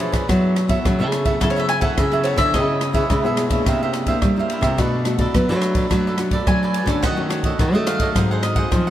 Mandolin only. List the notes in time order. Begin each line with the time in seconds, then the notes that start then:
1.41 A4
1.50 C#5
1.60 E5
1.69 G#5
1.81 F#5
1.98 E5
2.12 G#4
2.24 C#5
2.38 E5
2.54 D#5
6.48 G#5
7.03 F#5
7.87 F5
8.43 D#5